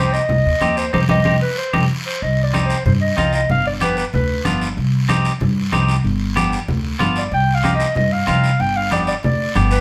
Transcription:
0.00 0.17 C2 medium
0.00 0.20 C4 medium
0.00 0.20 D#4 medium
0.00 0.20 G4 medium
0.00 0.14 C5 medium
0.13 0.79 D#5 loud
0.13 short guiro medium
0.29 0.42 C2 medium
0.29 low conga medium
0.29 long guiro medium
0.46 0.52 D#2 medium
0.61 0.87 D#2 medium
0.61 0.84 C4 medium
0.61 0.84 D#4 medium
0.61 0.84 G4 medium
0.61 high conga medium
0.61 short guiro medium
0.77 0.93 C5 medium
0.77 short guiro medium
0.93 1.06 C2 medium
0.93 1.04 C4 medium
0.93 1.04 D#4 medium
0.93 1.04 G4 medium
0.93 1.01 C5 medium
0.93 high conga medium
0.93 long guiro medium
1.09 1.22 C2 medium
1.09 1.20 C4 medium
1.09 1.20 D#4 medium
1.09 1.20 G4 medium
1.09 1.40 D#5 medium
1.09 high conga loud
1.09 long guiro medium
1.25 1.38 C2 medium
1.25 1.36 C4 loud
1.25 1.36 D#4 medium
1.25 1.36 G4 medium
1.25 high conga medium
1.25 long guiro loud
1.42 1.57 B4 medium
1.58 1.88 C5 medium
1.73 1.86 C2 medium
1.73 1.84 C4 medium
1.73 1.84 D#4 medium
1.73 1.84 G4 loud
1.73 high conga medium
1.73 long guiro loud
2.06 2.24 C5 medium
2.22 2.73 C2 medium
2.22 2.43 D#5 medium
2.22 long guiro medium
2.43 2.63 D5 medium
2.54 2.76 C4 medium
2.54 2.76 D#4 medium
2.54 2.76 G4 medium
2.54 high conga medium
2.54 short guiro medium
2.66 2.85 C5 medium
2.70 short guiro medium
2.85 3.11 G2 medium
2.85 2.93 C5 medium
2.85 low conga medium
2.85 long guiro medium
3.01 3.16 D#5 medium
3.17 3.43 C2 medium
3.17 3.40 C4 medium
3.17 3.40 D#4 medium
3.17 3.40 F4 medium
3.17 3.33 D#5 medium
3.17 high conga medium
3.17 short guiro medium
3.33 3.49 D#5 medium
3.33 short guiro medium
3.49 4.01 G1 medium
3.49 3.65 F5 loud
3.49 low conga medium
3.49 long guiro medium
3.67 3.74 D5 loud
3.81 4.04 B3 medium
3.81 4.04 D4 medium
3.81 4.04 G4 medium
3.81 3.97 B4 medium
3.81 high conga medium
3.81 short guiro medium
3.97 4.05 B4 medium
3.97 short guiro medium
4.13 4.39 D2 medium
4.13 4.43 B4 medium
4.13 low conga medium
4.13 long guiro medium
4.45 4.71 G1 medium
4.45 4.67 B3 medium
4.45 4.68 D4 medium
4.45 4.68 F4 medium
4.45 high conga medium
4.45 short guiro medium
4.62 short guiro medium
4.77 5.28 C2 medium
4.77 long guiro medium
5.09 5.31 C4 medium
5.09 5.31 D#4 medium
5.09 5.32 G4 loud
5.09 high conga medium
5.09 short guiro medium
5.25 short guiro medium
5.40 5.67 G2 medium
5.40 low conga medium
5.40 long guiro medium
5.72 5.98 C2 medium
5.72 5.95 C4 medium
5.72 5.95 D#4 medium
5.72 5.95 G4 medium
5.72 high conga medium
5.72 short guiro medium
5.89 short guiro medium
6.04 6.55 G1 medium
6.04 long guiro medium
6.36 6.59 B3 medium
6.36 6.59 D4 medium
6.36 6.59 G4 loud
6.36 high conga medium
6.36 short guiro medium
6.53 short guiro medium
6.68 6.94 D2 medium
6.68 low conga medium
6.68 long guiro medium
6.99 7.26 G1 medium
6.99 7.22 B3 medium
6.99 7.22 D4 medium
6.99 7.23 F4 medium
6.99 high conga medium
6.99 short guiro medium
7.16 7.32 D5 medium
7.16 short guiro medium
7.32 7.83 C2 medium
7.32 7.56 G5 loud
7.32 long guiro medium
7.54 7.74 F5 loud
7.63 7.86 C4 medium
7.63 7.86 D#4 medium
7.63 7.87 G4 medium
7.63 high conga medium
7.63 short guiro medium
7.75 7.95 D#5 medium
7.80 short guiro medium
7.95 8.21 G2 medium
7.95 8.14 D#5 medium
7.95 low conga medium
7.95 long guiro medium
8.12 8.28 F5 medium
8.27 8.53 C2 medium
8.27 8.50 C4 medium
8.27 8.50 D#4 medium
8.27 8.50 F4 medium
8.27 8.62 F5 loud
8.27 high conga medium
8.27 short guiro medium
8.44 short guiro medium
8.60 9.11 G1 loud
8.60 8.78 G5 loud
8.60 long guiro medium
8.76 8.92 F5 medium
8.91 9.14 B3 medium
8.91 9.14 D4 medium
8.91 9.14 G4 medium
8.91 9.00 D5 medium
8.91 high conga medium
8.91 short guiro medium
9.07 9.15 D5 medium
9.07 short guiro medium
9.23 9.49 D2 medium
9.23 9.54 D5 medium
9.23 low conga medium
9.23 long guiro medium
9.55 9.81 G1 medium
9.55 9.78 B3 medium
9.55 9.78 D4 medium
9.55 9.78 G4 medium
9.55 high conga medium
9.55 short guiro medium
9.71 9.81 B4 medium
9.71 short guiro medium

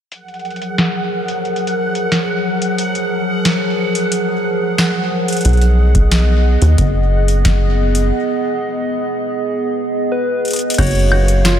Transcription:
0.12 5.41 F3 medium
0.12 5.41 F#3 medium
0.12 10.74 G#4 medium
0.12 5.41 A#4 medium
0.12 8.12 F#5 medium
0.12 closed hi-hat medium
0.28 closed hi-hat soft
0.34 closed hi-hat soft
0.39 closed hi-hat soft
0.45 closed hi-hat soft
0.50 closed hi-hat soft
0.56 closed hi-hat soft
0.62 closed hi-hat soft
0.78 snare loud
0.78 closed hi-hat medium
1.28 closed hi-hat medium
1.45 closed hi-hat soft
1.56 closed hi-hat soft
1.67 closed hi-hat soft
1.95 closed hi-hat soft
2.12 snare loud
2.12 closed hi-hat medium
2.62 closed hi-hat soft
2.78 closed hi-hat medium
2.95 closed hi-hat soft
3.45 snare loud
3.45 closed hi-hat medium
3.95 closed hi-hat medium
4.12 closed hi-hat medium
4.78 snare loud
5.28 closed hi-hat soft
5.33 closed hi-hat soft
5.37 closed hi-hat soft
5.41 closed hi-hat soft
5.45 6.57 B1 loud
5.45 10.74 B3 medium
5.45 10.74 D#5 medium
5.45 closed hi-hat medium
5.49 closed hi-hat soft
5.53 closed hi-hat soft
5.57 closed hi-hat soft
5.62 closed hi-hat soft
5.95 kick loud
5.95 closed hi-hat medium
6.12 snare loud
6.12 closed hi-hat medium
6.62 6.76 D#2 loud
6.62 closed hi-hat medium
6.78 8.12 F#1 medium
6.78 kick loud
6.78 closed hi-hat medium
7.28 closed hi-hat soft
7.45 kick loud
7.45 snare loud
7.45 closed hi-hat medium
7.95 closed hi-hat medium
10.12 10.80 B4 medium
10.45 closed hi-hat soft
10.48 closed hi-hat soft
10.51 closed hi-hat soft
10.53 closed hi-hat medium
10.56 closed hi-hat soft
10.59 closed hi-hat soft
10.70 closed hi-hat medium
10.74 closed hi-hat medium
10.78 11.60 F#1 loud
10.78 11.60 F#3 medium
10.78 11.11 F#4 medium
10.78 11.60 G#4 medium
10.78 11.60 A#4 medium
10.78 11.60 C#5 loud
10.78 11.60 F5 medium
10.78 kick loud
10.78 closed hi-hat medium
10.78 crash medium
10.78 high woodblock medium
10.83 closed hi-hat soft
10.87 closed hi-hat soft
10.91 closed hi-hat soft
10.95 closed hi-hat soft
10.99 closed hi-hat soft
11.12 11.51 F#4 medium
11.12 high woodblock medium
11.28 closed hi-hat soft
11.45 11.60 F4 medium
11.45 snare loud
11.45 closed hi-hat medium

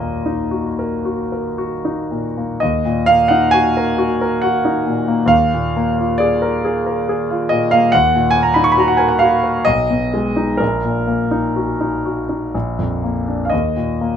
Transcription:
0.00 2.57 D#2 medium
0.00 0.15 A#2 soft
0.00 0.42 A#3 soft
0.00 2.09 D#5 medium
0.26 0.68 D#4 soft
0.51 0.94 F#4 soft
0.79 1.21 A#4 soft
1.05 1.47 F#4 soft
1.32 1.74 A#4 soft
1.58 2.00 F#4 soft
1.85 2.27 D#4 soft
2.11 2.52 A#2 soft
2.37 2.62 A#3 soft
2.60 5.24 D#2 medium
2.60 3.08 D#5 medium
2.85 3.22 A#2 soft
3.06 3.45 A#3 medium
3.06 3.30 F5 loud
3.28 3.67 D#4 medium
3.28 3.52 F#5 medium
3.51 3.90 F#4 soft
3.51 4.41 G#5 loud
3.77 4.12 A#4 medium
3.98 4.33 F#4 medium
4.21 4.56 A#4 medium
4.42 4.78 F#4 soft
4.42 5.30 F#5 medium
4.65 5.00 D#4 medium
4.87 5.22 A#2 soft
5.08 5.30 A#3 medium
5.26 7.87 D#2 medium
5.26 6.18 F5 loud
5.54 5.89 A#2 soft
5.77 6.11 A#3 medium
5.98 6.33 F4 medium
6.18 6.55 G#4 medium
6.18 7.49 D5 medium
6.42 6.77 A#4 medium
6.65 6.99 G#4 medium
6.86 7.21 A#4 medium
7.09 7.43 G#4 medium
7.31 7.64 F4 medium
7.49 7.85 A#2 medium
7.49 7.71 D#5 medium
7.71 7.94 A#3 medium
7.71 7.93 F5 loud
7.92 9.63 D#2 medium
7.92 8.31 F#5 loud
8.15 8.49 A#2 medium
8.31 8.46 G#5 medium
8.37 8.70 A#3 medium
8.43 8.56 A#5 medium
8.54 8.91 D#4 medium
8.54 8.65 B5 medium
8.64 8.73 C#6 medium
8.72 8.81 B5 medium
8.78 9.13 F#4 medium
8.78 8.89 A#5 medium
8.88 8.99 F#5 medium
8.97 9.35 A#4 medium
8.97 9.09 G#5 medium
9.08 9.21 F#5 medium
9.19 9.57 F#4 medium
9.19 9.65 F5 medium
9.44 9.67 A#4 soft
9.65 10.58 B1 medium
9.65 10.60 D#5 loud
9.90 10.28 B2 medium
10.14 10.51 G#3 soft
10.36 10.60 D#4 medium
10.57 12.50 A#1 medium
10.57 13.02 A#4 medium
10.85 11.23 A#2 soft
11.07 11.46 A#3 soft
11.31 11.71 D#4 soft
11.56 11.95 F#4 soft
11.81 12.20 D#4 soft
12.05 12.44 F#4 soft
12.29 12.54 D#4 soft
12.55 13.49 A#1 medium
12.79 13.18 F2 soft
13.04 13.43 A#3 soft
13.28 13.52 D4 soft
13.45 13.52 F5 medium
13.50 14.17 D#2 medium
13.50 14.17 D#5 medium
13.76 14.17 A#2 soft
14.01 14.17 A#3 soft

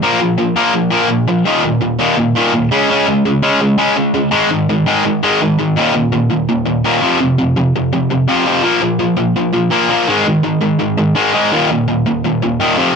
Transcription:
0.02 0.19 A#2 loud
0.02 0.19 F3 loud
0.02 0.19 A#3 loud
0.20 0.36 A#2 medium
0.20 0.36 F3 loud
0.38 0.54 A#2 medium
0.38 0.54 F3 medium
0.56 0.72 A#2 medium
0.56 0.72 F3 loud
0.56 0.73 A#3 loud
0.73 0.89 A#2 medium
0.73 0.89 F3 medium
0.90 1.07 A#2 medium
0.90 1.07 F3 medium
0.90 1.08 A#3 medium
1.08 1.25 A#2 medium
1.08 1.25 F3 medium
1.28 1.43 A#2 medium
1.28 1.44 F3 medium
1.45 1.62 D#2 loud
1.45 1.62 A#2 loud
1.45 1.63 D#3 loud
1.64 1.80 D#2 medium
1.64 1.80 A#2 medium
1.81 1.97 D#2 medium
1.81 1.97 A#2 medium
1.99 2.16 D#2 loud
1.99 2.16 A#2 loud
1.99 2.16 D#3 medium
2.18 2.34 D#2 medium
2.18 2.34 A#2 medium
2.36 2.52 D#2 medium
2.36 2.52 A#2 medium
2.36 2.53 D#3 loud
2.54 2.69 D#2 medium
2.54 2.70 A#2 medium
2.72 2.88 C#3 medium
2.72 2.88 G#3 medium
2.72 2.88 C#4 loud
2.89 3.06 C#3 loud
2.89 3.06 G#3 loud
2.89 3.07 C#4 loud
3.07 3.23 C#3 medium
3.07 3.23 G#3 medium
3.25 3.41 C#3 medium
3.25 3.41 G#3 medium
3.43 3.59 C#3 medium
3.43 3.59 G#3 loud
3.43 3.60 C#4 medium
3.61 3.77 C#3 medium
3.61 3.77 G#3 medium
3.78 3.95 C#3 medium
3.78 3.95 G#3 medium
3.78 3.96 C#4 medium
3.96 4.12 C#3 medium
3.96 4.12 G#3 medium
4.14 4.30 C#3 medium
4.14 4.30 G#3 medium
4.31 4.48 G#2 loud
4.31 4.49 D#3 loud
4.31 4.49 G#3 loud
4.51 4.67 G#2 medium
4.51 4.67 D#3 medium
4.69 4.85 G#2 medium
4.69 4.85 D#3 medium
4.86 5.03 G#2 medium
4.86 5.03 D#3 medium
4.86 5.03 G#3 loud
5.05 5.21 G#2 medium
5.05 5.21 D#3 medium
5.23 5.39 G#2 medium
5.23 5.39 D#3 medium
5.23 5.40 G#3 medium
5.42 5.57 G#2 medium
5.42 5.57 D#3 medium
5.59 5.74 G#2 medium
5.59 5.74 D#3 medium
5.76 5.93 D#2 loud
5.76 5.93 A#2 loud
5.76 5.93 D#3 loud
5.94 6.10 D#2 medium
5.94 6.10 A#2 medium
6.12 6.28 D#2 medium
6.12 6.28 A#2 medium
6.30 6.46 D#2 medium
6.30 6.46 A#2 medium
6.49 6.64 D#2 medium
6.49 6.64 A#2 medium
6.66 6.82 D#2 medium
6.66 6.82 A#2 medium
6.84 7.01 D#2 medium
6.84 7.01 A#2 loud
6.84 7.01 D#3 medium
7.02 7.18 F2 medium
7.02 7.19 C3 medium
7.02 7.19 F3 medium
7.20 7.36 F2 medium
7.20 7.36 C3 medium
7.38 7.54 F2 medium
7.38 7.54 C3 loud
7.56 7.72 F2 medium
7.56 7.72 C3 medium
7.76 7.91 F2 medium
7.76 7.91 C3 medium
7.93 8.08 F2 medium
7.93 8.08 C3 medium
8.10 8.26 F2 medium
8.10 8.26 C3 medium
8.28 8.45 F2 loud
8.28 8.45 C3 loud
8.28 8.45 F3 loud
8.46 8.63 F2 loud
8.46 8.63 C3 loud
8.46 8.63 F3 loud
8.63 8.80 A#2 loud
8.63 8.81 F3 loud
8.63 8.81 A#3 loud
8.82 8.98 A#2 medium
8.82 8.98 F3 loud
8.99 9.16 A#2 medium
8.99 9.16 F3 loud
9.17 9.33 A#2 medium
9.17 9.34 F3 medium
9.36 9.52 A#2 medium
9.36 9.52 F3 medium
9.53 9.70 A#2 medium
9.53 9.70 F3 medium
9.71 9.88 A#2 loud
9.71 9.88 F3 loud
9.71 9.89 A#3 loud
9.90 10.07 A#2 medium
9.90 10.06 F3 loud
9.90 10.07 A#3 loud
10.08 10.24 G#2 loud
10.08 10.25 D#3 loud
10.08 10.25 G#3 loud
10.26 10.42 G#2 medium
10.26 10.42 D#3 medium
10.43 10.60 G#2 medium
10.43 10.60 D#3 medium
10.61 10.78 G#2 medium
10.61 10.78 D#3 medium
10.79 10.96 G#2 medium
10.79 10.96 D#3 medium
10.98 11.14 G#2 medium
10.98 11.14 D#3 medium
11.15 11.32 G#2 medium
11.15 11.33 D#3 loud
11.15 11.33 G#3 loud
11.33 11.50 G#2 loud
11.33 11.51 D#3 medium
11.33 11.51 G#3 loud
11.52 11.69 D#2 loud
11.52 11.69 A#2 loud
11.52 11.69 D#3 loud
11.70 11.86 D#2 medium
11.70 11.87 A#2 medium
11.88 12.04 D#2 medium
11.88 12.04 A#2 medium
12.06 12.22 D#2 medium
12.06 12.22 A#2 medium
12.24 12.40 D#2 medium
12.24 12.40 A#2 medium
12.42 12.58 D#2 medium
12.42 12.58 A#2 medium
12.60 12.77 D#2 medium
12.60 12.77 A#2 loud
12.60 12.77 D#3 loud
12.78 12.94 F2 loud
12.78 12.94 C3 loud
12.78 12.95 F3 medium

